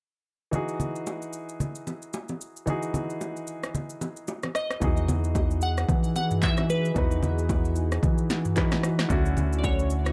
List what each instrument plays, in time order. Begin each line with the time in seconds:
0.51 grand piano E3 D#4 F#4 G#4, low conga, shaker
0.68 shaker
0.80 low conga, shaker
0.96 shaker
1.07 high bongo, shaker
1.22 shaker
1.33 shaker
1.49 shaker
1.60 low conga, shaker
1.75 shaker
1.87 low bongo, shaker
2.02 shaker
2.13 high bongo, shaker
2.29 low bongo, shaker
2.41 shaker
2.57 shaker
2.66 grand piano E3 D#4 F#4 G#4, low conga, shaker
2.83 shaker
2.94 low conga, shaker
3.10 shaker
3.21 high bongo, shaker
3.36 shaker
3.47 shaker
3.63 cross-stick, shaker
3.75 low conga, shaker
3.90 shaker
4.01 low bongo, shaker
4.17 shaker
4.28 high bongo, shaker
4.43 cross-stick, low bongo, shaker
4.55 synth pluck D#5, cross-stick, shaker
4.71 cross-stick, shaker
4.80 sub bass E2, grand piano E3 D#4 F#4 G#4, analog synth pad E3 D#4 F#4 G#4, kick, low conga, shaker
4.97 shaker
5.08 sub bass E2, high bongo, low conga, shaker
5.24 shaker
5.35 kick, high bongo, shaker
5.51 shaker
5.61 synth pluck F#5, shaker
5.78 cross-stick, shaker
5.89 sub bass E3, kick, low conga, shaker
6.04 shaker
6.16 synth pluck F#5, low bongo, shaker
6.31 mid tom, shaker
6.42 synth pluck E5, kick, clap, high bongo, shaker
6.57 cross-stick, low bongo, shaker
6.70 synth pluck B4, high bongo, shaker
6.85 shaker
6.94 sub bass E2, grand piano E3 D#4 F#4 B4, kick, low conga, shaker
7.11 shaker
7.23 sub bass E2, high bongo, low conga, shaker
7.39 shaker
7.49 kick, high bongo, shaker
7.65 shaker
7.76 shaker
7.92 cross-stick, shaker
8.03 sub bass E3, kick, low conga, shaker
8.18 shaker
8.30 snare, low bongo, shaker
8.45 mid tom, shaker
8.56 grand piano E3 D#4 F#4 B4, kick, clap, high bongo, shaker
8.71 cross-stick, snare, low bongo, shaker
8.83 cross-stick, high bongo, shaker
8.99 cross-stick, snare, shaker
9.09 sub bass D2, grand piano D3 C#4 E4 F#4, analog synth pad D3 C#4 E4, kick, low conga, shaker
9.26 shaker
9.37 sub bass D2, high bongo, low conga, shaker
9.53 shaker
9.59 synth pluck D5
9.64 synth pluck C#5, kick, high bongo, shaker
9.79 shaker
9.90 shaker
10.06 cross-stick, shaker